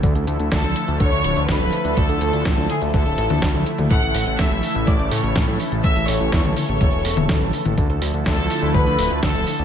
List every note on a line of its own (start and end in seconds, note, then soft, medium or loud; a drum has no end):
0.00 0.14 D2 loud
0.00 3.87 D3 medium
0.00 3.87 F3 medium
0.00 7.74 A3 medium
0.00 7.74 E4 medium
0.00 3.87 A4 medium
0.00 kick loud
0.00 closed hi-hat medium
0.15 0.26 D2 medium
0.15 closed hi-hat soft
0.27 0.38 D2 medium
0.27 closed hi-hat medium
0.40 0.50 D2 medium
0.40 closed hi-hat soft
0.52 0.62 D2 loud
0.52 0.97 A4 loud
0.52 0.97 A5 medium
0.52 kick loud
0.52 snare loud
0.52 closed hi-hat medium
0.64 0.74 D2 medium
0.64 closed hi-hat soft
0.76 closed hi-hat loud
0.88 0.99 D2 medium
0.88 closed hi-hat soft
1.00 1.11 D2 loud
1.00 1.45 C#5 loud
1.00 1.46 C#6 medium
1.00 kick loud
1.00 closed hi-hat medium
1.12 1.23 D2 medium
1.12 closed hi-hat soft
1.24 1.35 D1 medium
1.24 closed hi-hat medium
1.36 1.47 D2 medium
1.36 closed hi-hat soft
1.49 1.59 D2 loud
1.49 1.97 B4 loud
1.49 1.97 B5 medium
1.49 kick loud
1.49 snare loud
1.49 closed hi-hat medium
1.61 1.71 D1 medium
1.61 closed hi-hat soft
1.73 closed hi-hat medium
1.85 1.95 D2 medium
1.85 closed hi-hat soft
1.97 2.08 D2 loud
1.97 2.70 A4 loud
1.97 2.70 A5 medium
1.97 kick loud
1.97 closed hi-hat medium
2.09 2.20 D2 medium
2.09 closed hi-hat soft
2.21 2.32 D2 loud
2.21 closed hi-hat medium
2.33 2.44 D2 medium
2.33 closed hi-hat soft
2.45 2.56 A1 loud
2.45 kick loud
2.45 snare loud
2.45 closed hi-hat medium
2.58 2.68 D2 medium
2.58 closed hi-hat soft
2.58 high tom medium
2.70 2.81 G#4 medium
2.70 2.81 G#5 medium
2.70 closed hi-hat medium
2.82 2.92 D2 medium
2.82 closed hi-hat soft
2.94 3.04 D2 loud
2.94 3.63 A4 medium
2.94 3.63 A5 medium
2.94 kick loud
2.94 closed hi-hat medium
3.06 3.16 D1 medium
3.06 closed hi-hat soft
3.18 3.29 A1 medium
3.18 closed hi-hat medium
3.30 3.41 D2 medium
3.30 closed hi-hat soft
3.30 high tom medium
3.42 3.53 D2 loud
3.42 kick loud
3.42 snare loud
3.42 closed hi-hat medium
3.54 3.65 D2 medium
3.54 closed hi-hat soft
3.66 closed hi-hat medium
3.78 3.89 D2 medium
3.78 closed hi-hat soft
3.78 high tom medium
3.90 4.01 A1 loud
3.90 7.74 C#3 medium
3.90 7.74 E3 medium
3.90 9.65 A4 loud
3.90 4.36 F#5 loud
3.90 4.36 F#6 medium
3.90 kick loud
3.90 closed hi-hat medium
4.03 4.13 A1 medium
4.03 closed hi-hat soft
4.15 4.25 A1 loud
4.15 open hi-hat loud
4.27 4.37 A1 medium
4.27 closed hi-hat soft
4.39 4.49 A1 loud
4.39 4.87 E5 loud
4.39 4.88 E6 medium
4.39 kick loud
4.39 snare loud
4.39 closed hi-hat medium
4.51 4.62 A1 medium
4.51 closed hi-hat soft
4.63 open hi-hat loud
4.75 4.86 A1 medium
4.75 closed hi-hat soft
4.87 4.98 A1 loud
4.87 5.11 D5 medium
4.87 5.12 D6 medium
4.87 kick loud
4.87 closed hi-hat medium
4.99 5.10 A1 medium
4.99 closed hi-hat soft
5.11 5.22 A2 medium
5.11 5.56 C#5 medium
5.11 5.57 C#6 medium
5.11 open hi-hat loud
5.23 5.34 A1 medium
5.23 closed hi-hat soft
5.36 5.46 A1 loud
5.36 kick loud
5.36 snare loud
5.36 closed hi-hat medium
5.48 5.58 A2 medium
5.48 closed hi-hat soft
5.60 open hi-hat loud
5.72 5.82 A1 medium
5.72 closed hi-hat soft
5.84 5.95 A1 loud
5.84 6.07 E5 loud
5.84 6.07 E6 medium
5.84 kick loud
5.84 closed hi-hat medium
5.96 6.07 A1 medium
5.96 closed hi-hat soft
6.08 6.19 A1 medium
6.08 6.56 C#5 loud
6.08 6.56 C#6 medium
6.08 open hi-hat loud
6.20 6.31 A1 medium
6.20 closed hi-hat soft
6.32 6.43 E2 loud
6.32 kick loud
6.32 snare loud
6.32 closed hi-hat medium
6.45 6.55 A1 medium
6.45 closed hi-hat soft
6.45 high tom medium
6.57 7.25 C#5 medium
6.57 7.26 C#6 medium
6.57 open hi-hat loud
6.69 6.79 A1 medium
6.69 closed hi-hat soft
6.81 6.91 E1 loud
6.81 kick loud
6.81 closed hi-hat medium
6.93 7.03 E1 medium
6.93 closed hi-hat soft
7.05 7.15 E1 medium
7.05 open hi-hat loud
7.17 7.28 E1 medium
7.17 closed hi-hat soft
7.17 high tom medium
7.29 7.40 A1 loud
7.29 kick loud
7.29 snare loud
7.29 closed hi-hat medium
7.41 7.52 A1 medium
7.41 closed hi-hat soft
7.53 open hi-hat loud
7.65 7.76 A1 medium
7.65 closed hi-hat soft
7.65 high tom medium
7.77 7.88 D2 loud
7.77 9.65 D3 medium
7.77 9.65 F3 medium
7.77 9.65 A3 medium
7.77 9.65 E4 medium
7.77 kick loud
7.77 closed hi-hat medium
7.90 8.00 D2 medium
7.90 closed hi-hat soft
8.02 8.12 D2 loud
8.02 open hi-hat loud
8.14 8.24 D2 medium
8.14 closed hi-hat soft
8.26 8.37 D2 loud
8.26 8.71 A4 loud
8.26 8.71 A5 medium
8.26 kick loud
8.26 snare loud
8.26 closed hi-hat medium
8.38 8.48 D2 medium
8.38 closed hi-hat soft
8.50 open hi-hat loud
8.62 8.73 D2 medium
8.62 closed hi-hat soft
8.74 8.85 D2 loud
8.74 9.23 B4 loud
8.74 9.23 B5 medium
8.74 kick loud
8.74 closed hi-hat medium
8.87 8.97 D2 medium
8.87 closed hi-hat soft
8.99 9.09 D1 medium
8.99 open hi-hat loud
9.11 9.21 D2 medium
9.23 9.33 D2 loud
9.23 9.65 A4 loud
9.23 9.65 A5 medium
9.23 kick loud
9.23 snare loud
9.23 closed hi-hat medium
9.35 9.45 D1 medium
9.35 closed hi-hat soft
9.47 open hi-hat loud
9.59 9.65 D2 medium
9.59 closed hi-hat soft